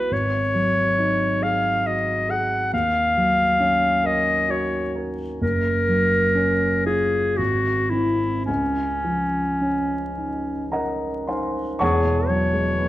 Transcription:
0.00 0.14 E4 soft
0.00 0.14 F#4 soft
0.00 0.14 B4 medium
0.11 2.68 G#1 soft
0.11 1.44 C#5 medium
0.55 1.24 F#3 soft
0.99 1.67 D#4 soft
1.41 2.10 G#4 soft
1.41 1.88 F5 medium
1.85 2.55 F#4 soft
1.85 2.32 D#5 medium
2.29 2.73 G#4 soft
2.29 2.73 F#5 medium
2.73 5.38 D#2 soft
2.73 4.07 F5 medium
3.17 3.87 F#3 soft
3.60 4.31 C#4 soft
4.04 4.77 A#4 soft
4.04 4.52 D#5 medium
4.48 5.23 F#4 soft
4.48 4.96 C#5 medium
4.96 5.42 A#4 soft
5.41 7.34 F#1 soft
5.41 6.82 A#4 medium
5.89 6.66 F#3 soft
6.35 7.18 C#4 soft
6.86 7.39 F4 soft
6.86 7.38 G#4 medium
7.37 8.44 G#1 soft
7.37 7.92 F#4 soft
7.90 8.44 C4 soft
7.90 8.45 E4 medium
7.90 8.44 E4 soft
8.46 11.77 C#2 soft
8.46 10.69 C#4 soft
9.04 9.95 F3 soft
9.61 10.51 C#4 soft
10.18 11.07 D#4 soft
10.72 11.61 C#4 soft
10.72 11.25 A#4 soft
10.72 11.24 D#5 soft
10.72 11.25 F#5 soft
10.72 11.28 A#5 medium
11.27 11.81 D#4 soft
11.27 11.77 C5 soft
11.27 11.77 F5 soft
11.27 11.77 G#5 soft
11.27 11.80 C6 soft
11.79 12.88 E1 soft
11.79 12.88 E2 medium
11.79 12.29 G#4 soft
11.79 12.88 C#5 medium
11.79 12.88 F#5 medium
11.79 12.88 A5 medium
11.79 12.88 C#6 medium
12.05 12.44 B2 soft
12.28 12.68 F#3 soft
12.28 12.88 C#5 medium
12.53 12.88 G#3 soft
12.78 12.88 B3 soft

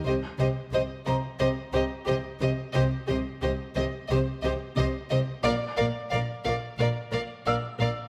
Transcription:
0.05 0.13 C2 medium
0.05 0.13 C3 medium
0.05 0.14 G4 medium
0.05 0.13 C5 medium
0.05 0.14 D#5 medium
0.39 0.47 C2 soft
0.39 0.47 C3 medium
0.39 0.48 G4 soft
0.39 0.47 C5 medium
0.39 0.48 D#5 soft
0.72 0.81 C2 medium
0.72 0.81 C3 medium
0.72 0.80 G4 medium
0.72 0.81 C5 soft
0.72 0.82 D#5 medium
1.06 1.14 C2 medium
1.06 1.14 C3 medium
1.06 1.14 G4 soft
1.06 1.15 C5 medium
1.06 1.15 D#5 soft
1.06 3.05 A#5 medium
1.39 1.48 C2 medium
1.39 1.48 C3 medium
1.39 1.48 G4 medium
1.39 1.47 C5 medium
1.39 1.48 D#5 medium
1.73 1.81 C2 medium
1.73 1.82 C3 medium
1.73 1.82 G4 medium
1.73 1.81 C5 medium
1.73 1.83 D#5 medium
2.07 2.15 C2 medium
2.07 2.16 C3 medium
2.07 2.15 G4 medium
2.07 2.15 C5 medium
2.07 2.16 D#5 medium
2.40 2.48 C2 medium
2.40 2.49 C3 medium
2.40 2.49 G4 medium
2.40 2.48 C5 soft
2.40 2.50 D#5 medium
2.74 2.83 C2 medium
2.74 2.82 C3 medium
2.74 2.82 G4 medium
2.74 2.82 C5 medium
2.74 2.82 D#5 medium
3.07 3.17 C2 medium
3.07 3.16 C3 medium
3.07 3.15 G4 soft
3.07 3.17 C5 soft
3.07 3.17 D#5 medium
3.42 3.51 C2 medium
3.42 3.50 C3 medium
3.42 3.50 G4 medium
3.42 3.51 C5 medium
3.42 3.51 D#5 medium
3.76 3.85 C2 medium
3.76 3.84 C3 medium
3.76 3.85 G4 medium
3.76 3.84 C5 medium
3.76 3.84 D#5 medium
4.09 4.18 C2 medium
4.09 4.18 C3 medium
4.09 4.18 G4 medium
4.09 4.19 C5 medium
4.09 4.17 D#5 medium
4.42 4.52 C2 medium
4.42 4.52 C3 medium
4.42 4.52 G4 medium
4.42 4.53 C5 medium
4.42 4.50 D#5 medium
4.76 4.85 C2 medium
4.76 4.84 C3 medium
4.76 4.85 G4 medium
4.76 4.87 C5 medium
4.76 4.84 D#5 medium
5.10 5.20 C2 medium
5.10 5.18 C3 medium
5.10 5.19 G4 medium
5.10 5.19 C5 medium
5.10 5.18 D#5 medium
5.43 5.53 A#1 medium
5.43 5.53 A#2 medium
5.43 5.53 A#4 medium
5.43 7.42 D5 soft
5.43 5.52 D5 medium
5.43 5.52 F5 medium
5.43 7.42 D6 soft
5.77 5.86 A#1 medium
5.77 5.87 A#2 medium
5.77 5.86 A#4 medium
5.77 5.85 D5 medium
5.77 5.85 F5 medium
6.10 6.20 A#1 medium
6.10 6.21 A#2 medium
6.10 6.20 A#4 soft
6.10 6.20 D5 medium
6.10 6.18 F5 soft
6.45 6.54 A#1 medium
6.45 6.54 A#2 medium
6.45 6.53 A#4 medium
6.45 6.54 D5 soft
6.45 6.53 F5 medium
6.78 6.87 A#1 medium
6.78 6.87 A#2 medium
6.78 6.88 A#4 medium
6.78 6.88 D5 medium
6.78 6.86 F5 soft
7.12 7.21 A#1 medium
7.12 7.21 A#2 medium
7.12 7.21 A#4 soft
7.12 7.21 D5 soft
7.12 7.20 F5 medium
7.46 7.55 A#1 medium
7.46 7.55 A#2 soft
7.46 7.55 A#4 medium
7.46 7.54 D5 soft
7.46 7.55 F5 medium
7.46 8.08 E6 soft
7.79 7.89 A#1 soft
7.79 7.88 A#2 medium
7.79 7.88 A#4 soft
7.79 7.90 D5 soft
7.79 7.87 F5 soft

